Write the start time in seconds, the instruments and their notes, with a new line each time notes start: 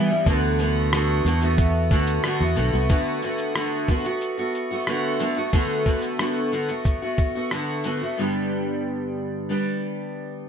0.10 steel-string acoustic guitar E3 G3 B3 E4
0.26 fingered electric bass D2, steel-string acoustic guitar D3 A3 B3 F#4, kick, shaker
0.59 steel-string acoustic guitar D3 A3 B3 F#4, shaker
0.93 steel-string acoustic guitar D3 A3 B3 F#4, cross-stick, shaker
1.25 fingered electric bass E2, steel-string acoustic guitar D3 A3 B3 F#4, shaker
1.41 steel-string acoustic guitar A3 B3 F#4, shaker
1.58 kick, shaker
1.91 fingered electric bass D2, steel-string acoustic guitar D3 A3 B3 F#4, kick, shaker
2.07 shaker
2.24 steel-string acoustic guitar D3 A3 B3 F#4, cross-stick, shaker
2.40 fingered electric bass E2, steel-string acoustic guitar A3 B3 F#4
2.56 fingered electric bass B1, steel-string acoustic guitar D3 A3 B3 F#4, shaker
2.73 fingered electric bass C2, steel-string acoustic guitar A3 B3 F#4
2.89 steel-string acoustic guitar D3 A3 B3 F#4, kick, shaker
3.22 steel-string acoustic guitar D3 A3 B3 F#4, shaker
3.38 shaker
3.55 steel-string acoustic guitar D3 A3 B3 F#4, cross-stick, shaker
3.88 steel-string acoustic guitar D3 A3 B3 F#4, kick, shaker
4.04 steel-string acoustic guitar A3 B3 F#4, shaker
4.21 shaker
4.38 steel-string acoustic guitar A3 B3 F#4
4.54 shaker
4.71 steel-string acoustic guitar A3 B3 F#4
4.87 steel-string acoustic guitar D3 A3 B3 F#4, cross-stick, shaker
5.20 steel-string acoustic guitar D3 A3 B3 F#4, shaker
5.37 steel-string acoustic guitar A3 B3 F#4
5.53 steel-string acoustic guitar D3 A3 B3 F#4, kick, shaker
5.86 steel-string acoustic guitar D3 A3 B3 F#4, kick, shaker
6.02 shaker
6.19 steel-string acoustic guitar D3 A3 B3 F#4, cross-stick, shaker
6.52 steel-string acoustic guitar D3 A3 B3 F#4, shaker
6.69 steel-string acoustic guitar A3 B3 F#4, shaker
6.85 kick, shaker
7.02 steel-string acoustic guitar A3 B3 F#4
7.18 kick, shaker
7.35 steel-string acoustic guitar A3 B3 F#4
7.51 steel-string acoustic guitar D3 A3 B3 F#4, cross-stick, shaker
7.84 steel-string acoustic guitar D3 A3 B3 F#4, shaker
8.01 steel-string acoustic guitar A3 B3 F#4
8.17 steel-string acoustic guitar G2 D3 G3 B3 D4 G4
9.49 steel-string acoustic guitar G3 B3 D4 G4